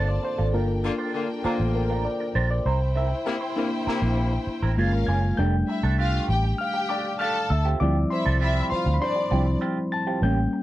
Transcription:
Already playing: G1 A#3 C4 D4 F4 A4 A#4 C5 D5 A5
0.09 D5
0.23 C5, muted clean electric guitar stroke
0.38 G#1 D4 F4 A4
0.53 G1 A#3 D4 F4 A4 A#4 G5
0.68 muted clean electric guitar stroke
0.84 D3 A#3 F4, muted clean electric guitar stroke
0.98 D4 F4 C5
1.14 D3 A#3 F4, muted clean electric guitar stroke
1.44 D3 A#3 D4 F4 A4 A#4 C5, muted fingered electric bass stroke
1.60 A1
1.75 A#4, muted clean electric guitar stroke
1.90 D4 F4 A#4
2.05 D5, muted clean electric guitar stroke
2.20 muted clean electric guitar stroke
2.35 A#1 D4 F4 A#4 C5
2.51 D5, muted clean electric guitar stroke
2.66 C2 C4 E4 A#4 C5 G5
2.81 muted clean electric guitar stroke
2.95 C4 E4 A#4 E5
3.11 muted clean electric guitar stroke
3.26 C3 A#3 E4, muted clean electric guitar stroke
3.41 C4 E4 C5
3.56 C3 A#3 D4 E4, muted clean electric guitar stroke
3.86 C3 A#3 C4 E4 A#4, muted fingered electric bass stroke
4.02 A#1
4.17 muted clean electric guitar stroke
4.32 muted clean electric guitar stroke
4.47 muted fingered electric bass stroke
4.62 A1 C4 E4 A#4
4.77 F#1 G#3 A#3 C#4 F4 G#4 A#4 F5
4.92 G#1, muted clean electric guitar stroke
5.07 F#1 A#3 F4 G#4 G#5 G#6
5.24 muted clean electric guitar stroke
5.37 F1 G3 A3 D4 G4 G5 G6
5.68 E4 E5, muted clean electric guitar stroke
5.83 C2 A3 D4 A4
5.98 A3 D4 F4 G4 F5
6.28 A1 G4 G5, muted clean electric guitar stroke
6.43 muted clean electric guitar stroke
6.58 G4 F5 G5 F6
6.74 muted clean electric guitar stroke
6.89 A3 D4 G4 D5 D6
7.05 muted clean electric guitar stroke
7.19 A3 D4 G4 A4 F5 A5 F6
7.50 D2 E5 E6, muted clean electric guitar stroke
7.65 C4 F4 G4
7.80 D2 F3 G3 C4 E4 F4 G4 D5 D6
8.10 E4 C5 E5 C6, muted clean electric guitar stroke
8.26 C2 C4 F4 A4
8.40 C4 E4 F4 G4 E5
8.63 B5
8.70 F4 C5 F5 C6, muted clean electric guitar stroke, muted fingered electric bass stroke
8.86 D2, muted clean electric guitar stroke
8.94 B5
9.01 D4 C5 D5 C6, muted clean electric guitar stroke
9.16 muted clean electric guitar stroke
9.31 C2 F3 G3 C4 E4 F4 G4
9.46 muted clean electric guitar stroke
9.61 C4 F4 G4
9.92 A5 A6, muted clean electric guitar stroke
10.07 C4 F4 G4
10.22 A1 G3 A#3 C#4 G4 G5 G6
10.53 muted clean electric guitar stroke

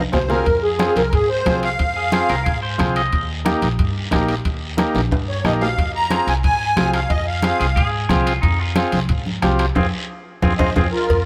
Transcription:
0.12 C2 C4 F4 G#4 C5, bombo low, bombo rim, low conga, low timbale, short guiro
0.29 C4 F4 G#4 A#4, low conga, low timbale, short guiro
0.45 F2, bombo low, high conga, high timbale, long guiro
0.63 G#4
0.79 C4 F4 G#4, bombo rim, high conga, high timbale, short guiro
0.96 C2 A#4, high conga, high timbale, short guiro
1.12 G#2 G#4, bombo low, high conga, high timbale, long guiro
1.29 C5
1.46 C2 C4 F4 G#4, bombo low, bombo rim, high conga, high timbale, low timbale, short guiro
1.63 F5, high timbale, short guiro
1.79 F2, bombo low, high conga, high timbale, long guiro
1.96 G#4
2.12 C4 F4 G#4, bombo rim, high conga, high timbale, short guiro
2.29 C2 A#4, high timbale, short guiro
2.45 G#2 G#4, bombo low, high conga, high timbale, long guiro
2.63 C5
2.78 C2 C4 F4 G#4, bombo low, bombo rim, high conga, low conga, high timbale, short guiro
2.96 D#5, high timbale, short guiro
3.12 D#2, bombo low, high conga, high timbale, long guiro
3.45 A#3 D#4 G4, bombo rim, high conga, high timbale, short guiro
3.62 A#1, high conga, high timbale, short guiro
3.79 G2, bombo low, high conga, high timbale, long guiro
4.11 A#1 A#3 D#4 G4, bombo low, bombo rim, high conga, high timbale, low timbale, short guiro
4.29 high timbale, short guiro
4.45 D#2, bombo low, high conga, high timbale, long guiro
4.77 A#3 D#4 G4, bombo rim, high conga, high timbale, short guiro
4.95 A#1, high conga, high timbale, short guiro
5.11 G2, bombo low, high conga, high timbale, long guiro
5.29 C#5
5.44 A#1 A#3 D#4 G4 D#5, bombo rim, high conga, low conga, short guiro
5.61 F5, low timbale, short guiro
5.78 F2, bombo low, high conga, high timbale, long guiro
5.95 A#5
6.10 C4 F4 G#4, bombo rim, high conga, high timbale, short guiro
6.27 C2 G#5, high timbale, short guiro
6.43 G#2 G#5, bombo low, high conga, high timbale, long guiro
6.76 C2 C4 F4 G#4, bombo rim, high conga, high timbale, low timbale, short guiro
6.93 F5, bombo rim, high timbale, short guiro
7.10 F2 D#5, bombo low, high conga, high timbale, long guiro
7.27 F5
7.42 C4 F4 G#4, bombo rim, high conga, high timbale, short guiro
7.60 C2 G#4, high timbale, short guiro
7.76 G#2 G#4, bombo low, high conga, high timbale, long guiro
8.09 C2 C4 F4 G#4, bombo low, bombo rim, high conga, low conga, high timbale, short guiro
8.14 G4
8.26 F4, high timbale, short guiro
8.42 F2 D#4, bombo low, high conga, high timbale, long guiro
8.59 F4
8.76 C4 F4 G#4, bombo rim, high conga, high timbale, short guiro
8.92 C2, high conga, high timbale, short guiro
9.09 G#2, bombo low, high conga, high timbale, long guiro
9.26 high conga
9.42 C2 C4 F4 G4, bombo rim, high conga, high timbale, low timbale, short guiro
9.59 bombo rim, high timbale, short guiro
9.75 F2 C4 F4 G#4, bombo low, high conga, high timbale, long guiro
10.42 F2 C4 F4 G#4, bombo low, high conga, high timbale, long guiro
10.57 F2 C4 F4 G#4 C5 D#5, bombo low, high conga, high timbale, long guiro
10.75 F2 C4 F4 G#4 C5, bombo low, high conga, high timbale, long guiro
10.92 F4 A#4
11.09 F2, bombo low, cowbell, long guiro

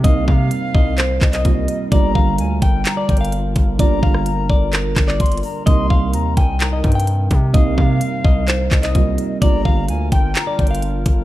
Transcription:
Already playing: C3 G3 A#3 C4 D#4 A#4
0.03 C2 C3 G3 A#3 D#4 D#5 F5, kick, closed hi-hat
0.28 C3 F5, kick
0.51 closed hi-hat
0.74 C2 D#5, kick
0.98 C5, clap, closed hi-hat
1.21 C2 D#5, kick, clap, closed hi-hat
1.33 D#5, clap, closed hi-hat
1.44 C2 C3 G3 A#3 F4, kick, closed hi-hat
1.68 closed hi-hat
1.90 G1 D3 G3 A#3 D4 F4 D5 A#5, kick, closed hi-hat
2.15 G1 F5, kick
2.38 D2 G#5, closed hi-hat
2.62 G1 G5, kick, closed hi-hat
2.85 A#5, clap, closed hi-hat
2.97 D5
3.09 G1 G5, kick, closed hi-hat
3.17 F5, closed hi-hat
3.25 closed hi-hat
3.32 closed hi-hat
3.56 G1, kick, closed hi-hat
3.78 G1 D3 G3 A#3 F4 D5 A#5, kick, closed hi-hat
4.03 G1 F5, kick
4.14 cross-stick
4.26 closed hi-hat
4.50 G1 D5, kick
4.73 A#4, clap, closed hi-hat
4.96 G1, kick, cross-stick, clap, closed hi-hat
5.08 D5, clap
5.20 G1 C6, kick, closed hi-hat
5.26 closed hi-hat
5.32 closed hi-hat
5.38 closed hi-hat
5.43 A#5, open hi-hat
5.65 C2 C3 G3 A#3 C4 D#4 D#5 C6, kick, closed hi-hat
5.90 C2 F5, kick
6.13 D#2 A#5, closed hi-hat
6.37 C2 G5 G#5, kick, closed hi-hat
6.60 A#5, clap, closed hi-hat
6.73 D#5
6.84 G2 G5, kick, closed hi-hat
6.92 G5, closed hi-hat
7.00 closed hi-hat
7.07 closed hi-hat
7.31 C3, kick, closed hi-hat
7.53 C2 C3 G3 A#3 D#4 D#5 F5, kick, closed hi-hat
7.78 C3 F5, kick
8.01 closed hi-hat
8.24 C2 D#5, kick
8.48 C5, clap, closed hi-hat
8.71 C2 D#5, kick, clap, closed hi-hat
8.83 D#5, clap, closed hi-hat
8.94 C2 C3 G3 A#3 F4, kick, closed hi-hat
9.18 closed hi-hat
9.40 G1 D3 G3 A#3 D4 F4 A#4 D5 A#5, kick, closed hi-hat
9.65 G1 F5, kick
9.89 D2 G#5, closed hi-hat
10.12 G1 G5, kick, closed hi-hat
10.35 A#5, clap, closed hi-hat
10.47 D5
10.59 G1 G5, kick, closed hi-hat
10.67 F5, closed hi-hat
10.75 closed hi-hat
10.82 closed hi-hat
11.06 G1, kick, closed hi-hat

